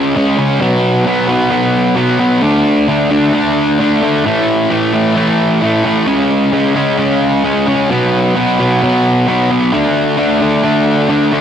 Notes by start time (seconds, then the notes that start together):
Already playing: C#3 G#3 C#4
0.15 C#3 G#3 C#4
0.38 C#3 G#3 C#4
0.60 B2 F#3 B3
1.05 B2 F#3 B3
1.28 B2 F#3 B3
1.51 B2 F#3 B3
1.96 B2 F#3 B3
2.19 B2 F#3 B3
2.42 D3 A3 D4
2.88 D3 A3 D4
3.10 D3 A3 D4
3.33 D3 A3 D4
3.79 D3 A3 D4
4.02 D3 A3 D4
4.25 A2 E3 A3
4.70 A2 E3 A3
4.93 A2 E3 A3
5.15 A2 E3 A3
5.62 A2 E3 A3
5.84 A2 E3 A3
6.07 C#3 G#3 C#4
6.53 C#3 G#3 C#4
6.75 C#3 G#3 C#4
6.98 C#3 G#3 C#4
7.44 C#3 G#3 C#4
7.67 C#3 G#3 C#4
7.90 B2 F#3 B3
8.35 B2 F#3 B3
8.59 B2 F#3 B3
8.82 B2 F#3 B3
9.27 B2 F#3 B3
9.51 B2 F#3 B3
9.73 D3 A3 D4
10.18 D3 A3 D4
10.41 D3 A3 D4
10.63 D3 A3 D4
11.09 D3 A3 D4
11.32 D3 A3 D4